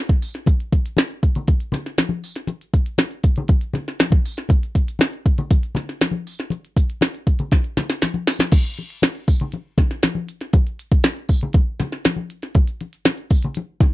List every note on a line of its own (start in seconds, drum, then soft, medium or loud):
0.09 kick medium
0.09 closed hi-hat soft
0.22 open hi-hat medium
0.34 snare soft
0.34 closed hi-hat medium
0.46 kick medium
0.46 closed hi-hat medium
0.46 muted conga soft
0.60 closed hi-hat soft
0.72 kick medium
0.72 closed hi-hat medium
0.72 muted conga soft
0.86 closed hi-hat soft
0.97 snare loud
0.97 closed hi-hat medium
0.97 high conga medium
1.10 closed hi-hat soft
1.23 kick medium
1.23 closed hi-hat medium
1.35 closed hi-hat soft
1.35 low conga medium
1.48 kick medium
1.48 closed hi-hat medium
1.48 muted conga soft
1.60 closed hi-hat soft
1.72 snare soft
1.72 closed hi-hat medium
1.72 muted conga soft
1.72 low conga medium
1.86 snare soft
1.86 closed hi-hat soft
1.98 snare medium
1.98 closed hi-hat medium
1.98 high conga soft
2.09 high conga medium
2.24 open hi-hat medium
2.36 snare soft
2.36 closed hi-hat medium
2.47 closed hi-hat medium
2.47 muted conga medium
2.61 closed hi-hat soft
2.74 kick medium
2.74 closed hi-hat medium
2.86 closed hi-hat medium
2.98 snare loud
2.98 closed hi-hat medium
2.98 high conga medium
3.11 closed hi-hat soft
3.24 kick medium
3.24 closed hi-hat medium
3.36 closed hi-hat soft
3.36 low conga medium
3.48 kick medium
3.48 closed hi-hat medium
3.48 muted conga soft
3.61 closed hi-hat soft
3.73 snare soft
3.73 closed hi-hat medium
3.73 muted conga soft
3.73 low conga medium
3.88 snare soft
3.88 closed hi-hat soft
4.00 snare medium
4.00 closed hi-hat medium
4.00 high conga soft
4.11 kick medium
4.11 high conga medium
4.25 open hi-hat medium
4.37 snare soft
4.37 closed hi-hat medium
4.49 kick loud
4.49 closed hi-hat medium
4.49 muted conga soft
4.63 closed hi-hat soft
4.75 kick medium
4.75 closed hi-hat medium
4.75 muted conga soft
4.88 closed hi-hat soft
4.99 snare loud
4.99 closed hi-hat medium
4.99 high conga medium
5.13 closed hi-hat soft
5.26 kick medium
5.26 closed hi-hat medium
5.38 closed hi-hat soft
5.38 low conga medium
5.51 kick medium
5.51 closed hi-hat medium
5.51 muted conga soft
5.63 closed hi-hat soft
5.75 snare soft
5.75 closed hi-hat medium
5.75 muted conga medium
5.75 low conga medium
5.89 snare soft
5.89 closed hi-hat soft
6.01 snare medium
6.01 closed hi-hat medium
6.01 high conga soft
6.11 high conga medium
6.27 open hi-hat medium
6.39 snare soft
6.39 closed hi-hat medium
6.50 closed hi-hat medium
6.50 muted conga medium
6.65 closed hi-hat soft
6.77 kick medium
6.77 closed hi-hat medium
6.90 closed hi-hat soft
7.01 snare loud
7.01 closed hi-hat medium
7.01 high conga medium
7.14 closed hi-hat soft
7.27 kick medium
7.27 closed hi-hat medium
7.39 closed hi-hat soft
7.39 low conga medium
7.52 kick medium
7.52 snare medium
7.52 closed hi-hat medium
7.52 muted conga soft
7.64 closed hi-hat soft
7.77 snare medium
7.77 closed hi-hat medium
7.77 muted conga medium
7.77 low conga medium
7.90 snare medium
7.90 closed hi-hat soft
8.02 snare medium
8.02 closed hi-hat medium
8.02 high conga soft
8.14 closed hi-hat soft
8.14 high conga medium
8.27 snare medium
8.27 open hi-hat medium
8.39 snare medium
8.39 closed hi-hat medium
8.39 high conga soft
8.52 kick loud
8.52 closed hi-hat medium
8.52 crash medium
8.52 muted conga soft
8.65 closed hi-hat soft
8.78 closed hi-hat medium
8.78 muted conga soft
8.90 closed hi-hat medium
9.02 snare loud
9.02 closed hi-hat medium
9.02 high conga medium
9.15 closed hi-hat soft
9.28 kick medium
9.28 open hi-hat medium
9.40 closed hi-hat soft
9.40 low conga medium
9.52 closed hi-hat medium
9.52 muted conga soft
9.78 kick medium
9.78 snare soft
9.78 closed hi-hat medium
9.78 muted conga soft
9.78 low conga medium
9.91 snare soft
9.91 closed hi-hat soft
10.03 snare loud
10.03 closed hi-hat medium
10.03 high conga medium
10.15 high conga medium
10.29 closed hi-hat medium
10.41 snare soft
10.41 closed hi-hat medium
10.53 kick loud
10.53 closed hi-hat medium
10.53 muted conga medium
10.67 closed hi-hat soft
10.79 closed hi-hat medium
10.92 kick medium
10.92 closed hi-hat soft
11.04 snare loud
11.04 closed hi-hat medium
11.04 high conga medium
11.17 closed hi-hat soft
11.29 kick medium
11.29 open hi-hat medium
11.41 closed hi-hat soft
11.41 low conga medium
11.53 kick loud
11.53 closed hi-hat medium
11.53 muted conga soft
11.80 snare soft
11.80 closed hi-hat medium
11.80 muted conga medium
11.80 low conga medium
11.92 snare soft
11.92 closed hi-hat soft
12.05 snare medium
12.05 closed hi-hat medium
12.05 high conga medium
12.16 high conga medium
12.30 closed hi-hat medium
12.43 snare soft
12.43 closed hi-hat medium
12.55 kick loud
12.55 closed hi-hat medium
12.55 muted conga medium
12.68 closed hi-hat soft
12.81 closed hi-hat medium
12.81 muted conga soft
12.93 closed hi-hat medium
13.05 snare loud
13.05 closed hi-hat medium
13.05 high conga medium
13.18 closed hi-hat soft
13.30 kick medium
13.30 open hi-hat medium
13.43 closed hi-hat medium
13.43 low conga medium
13.55 closed hi-hat medium
13.55 muted conga soft
13.80 kick medium
13.80 snare soft
13.80 closed hi-hat medium
13.80 muted conga soft
13.80 low conga medium